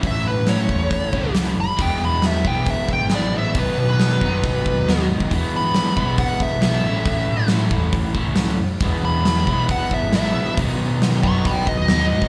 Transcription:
<<
  \new Staff \with { instrumentName = "Lead electric guitar" } { \time 4/4 \key e \major \tempo 4 = 137 e''8 b'8 cis''2 r8 b''8 | g''8 b''8 e''8 g''8 e''8 g''8 d''8 e''8 | b'8 b'2. r8 | r8 b''4. fis''8 e''8 e''4~ |
e''4 r2. | r8 b''4. fis''8 e''8 e''4 | r4. <a'' cis'''>8 <g'' b''>8 dis''4. | }
  \new Staff \with { instrumentName = "Overdriven electric guitar" } { \clef bass \time 4/4 \key e \major <a, e a cis' e'>4 <a, e a cis' e'>4. <a, e a cis' e'>4 r8 | <e gis b e'>4. <e gis b e'>4. <e gis b e'>4 | <b, dis fis b dis'>4. <b, dis fis b dis'>4. <b, dis fis b dis'>4 | <e gis b e'>4. <e gis b e'>4. <e gis b e'>8 <a, e a cis' e'>8~ |
<a, e a cis' e'>4 <a, e a cis' e'>4. <a, e a cis' e'>4 r8 | <e gis b e'>4. <e gis b e'>4. <e gis b e'>4 | <b, dis fis b dis'>4. <b, dis fis b dis'>4. <b, dis fis b dis'>4 | }
  \new Staff \with { instrumentName = "Fingered electric bass" } { \clef bass \time 4/4 \key e \major a,,16 r16 a,4 e,8 r8. cis,8. fis,,16 r16 | e,,16 r16 e,4 b,,8 r8. gis,,8. a,,16 r16 | b,,16 r16 b,4 fis,8 r8. dis,8. gis,16 r16 | e,16 r16 e4 b,,8 r8. b,,8. a,,16 r16 |
a,,16 r16 a,4 e,8 r8. cis,8. fis,16 r16 | e,,16 r16 e,4 b,,8 r8. gis,,8. ais,,16 r16 | b,,16 r16 b,4 fis,8 r8. dis,8. gis,16 r16 | }
  \new DrumStaff \with { instrumentName = "Drums" } \drummode { \time 4/4 <hho bd>4 <hho sn>8 bd8 <hho bd>8 bd8 <hho sn>4 | <hho bd>4 <hho sn>8 bd8 <hho bd>8 bd8 <hho sn>4 | <hho bd>4 <hho sn>8 bd8 <hho bd>8 bd8 <hho sn>8. bd16 | <hho bd>4 <hho sn>8 bd8 <hho bd>8 bd8 <hho sn>4 |
<hho bd>4 <hho sn>8 bd8 <hho bd>8 bd8 <hho sn>4 | <hho bd>4 <hho sn>8 bd8 <hho bd>8 bd8 <hho sn>4 | <hho bd>4 <hho sn>8 bd8 <hho bd>8 bd8 <hho sn>8. bd16 | }
>>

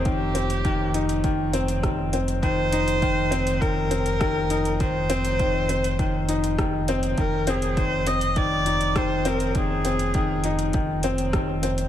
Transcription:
<<
  \new Staff \with { instrumentName = "Viola" } { \time 4/4 \key f \dorian \tempo 4 = 101 g'2 r2 | c''2 bes'2 | c''2. r4 | bes'8 aes'8 c''8 ees''8 d''4 c''8 bes'8 |
aes'2 r2 | }
  \new Staff \with { instrumentName = "Felt piano" } { \clef bass \time 4/4 \key f \dorian ees8 c'8 ees8 ees'8 ees8 c'8 ees8 c'8 | ees8 ees'8 ees8 c'8 ees8 c'8 ees8 ees'8 | ees8 c'8 ees8 c'8 ees8 ees'8 ees8 c'8 | ees8 c'8 ees8 c'8 ees8 ees'8 ees8 c'8 |
ees8 c'8 ees8 ees'8 ees8 c'8 ees8 c'8 | }
  \new Staff \with { instrumentName = "Analog synth bass" } { \clef bass \time 4/4 \key f \dorian f,,1~ | f,,1~ | f,,1 | f,,1~ |
f,,1 | }
  \new DrumStaff \with { instrumentName = "Drums" } \drummode { \time 4/4 <hh bd>8 hh16 hh16 <hh bd>8 hh16 hh16 <hh bd>8 hh16 hh16 <hh bd ss>8 hh16 hh16 | <hh bd>8 hh16 hh16 <hh bd>8 hh16 hh16 <hh bd>8 hh16 hh16 <hh bd ss>8 hh16 hh16 | <hh bd>8 hh16 hh16 <hh bd>8 hh16 hh16 <hh bd>8 hh16 hh16 <hh bd ss>8 hh16 hh16 | <hh bd>8 hh16 hh16 <hh bd>8 hh16 hh16 <hh bd>8 hh16 hh16 <hh bd ss>8 hh16 hh16 |
<hh bd>8 hh16 hh16 <hh bd>8 hh16 hh16 <hh bd>8 hh16 hh16 <hh bd ss>8 hh16 hh16 | }
>>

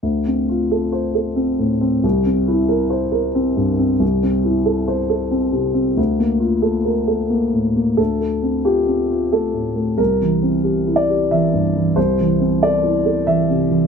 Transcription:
\new Staff \with { instrumentName = "Grand piano" } { \time 3/4 \key d \minor \tempo 4 = 91 << { r2. | r2. | r2. | r2. |
a'4 g'4 a'4 | bes'4. d''8 e''4 | c''4 d''4 e''4 | } \\ { \tuplet 3/2 { d,8 c'8 f'8 a'8 c''8 a'8 c'8 a,8 c'8 } | \tuplet 3/2 { c,8 c'8 e'8 bes'8 c''8 bes'8 c'8 g,8 c'8 } | \tuplet 3/2 { c,8 c'8 e'8 a'8 c''8 a'8 c'8 c8 c'8 } | \tuplet 3/2 { d,8 bes8 f'8 a'8 bes'8 a'8 bes8 a,8 bes8 } |
\tuplet 3/2 { d,8 a8 c'8 f'8 c'8 f'8 a8 a,8 a8 } | \tuplet 3/2 { c,8 e8 c'8 g'8 e'8 g'8 e8 g,8 e8 } | \tuplet 3/2 { c,8 e8 c'8 a'8 e'8 a'8 e8 c8 e8 } | } >> }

